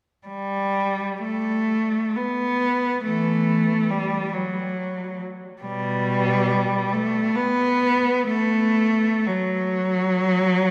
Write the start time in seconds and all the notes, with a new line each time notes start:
0.27 G3
1.24 A3
2.16 B3
3.04 E3 A3
3.90 G3
4.33 F#3
5.62 B2 G3
6.93 A3
7.35 B3
8.27 A3
9.26 F#3